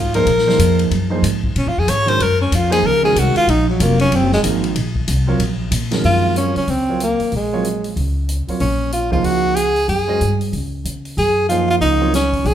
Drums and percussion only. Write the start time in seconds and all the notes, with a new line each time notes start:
0.14 ride
0.27 ride
0.38 snare
0.49 snare
0.59 hi-hat pedal, ride
0.79 ride
0.91 ride
1.24 hi-hat pedal, ride
1.44 kick
1.56 ride
1.88 hi-hat pedal, ride
2.08 ride
2.20 ride
2.52 hi-hat pedal, ride
2.72 ride
3.16 hi-hat pedal, ride
3.36 ride
3.48 ride
3.80 hi-hat pedal, ride
4.00 ride
4.12 ride
4.32 snare
4.44 hi-hat pedal, ride
4.64 ride
4.76 ride
4.96 kick
5.08 hi-hat pedal, ride
5.40 ride
5.72 hi-hat pedal, ride
5.91 snare, ride
6.04 open hi-hat
6.36 closed hi-hat
6.56 open hi-hat
6.68 open hi-hat
7.00 closed hi-hat
7.20 open hi-hat
7.32 open hi-hat
7.64 closed hi-hat
7.84 open hi-hat
7.97 open hi-hat
8.29 closed hi-hat
8.48 open hi-hat
8.60 open hi-hat
8.92 closed hi-hat
9.24 open hi-hat
9.56 closed hi-hat
9.76 open hi-hat
9.89 open hi-hat
10.21 closed hi-hat
10.41 open hi-hat
10.53 open hi-hat
10.85 closed hi-hat
11.05 open hi-hat
11.18 open hi-hat
11.50 closed hi-hat
11.82 open hi-hat
12.14 snare, closed hi-hat
12.33 kick, open hi-hat
12.45 open hi-hat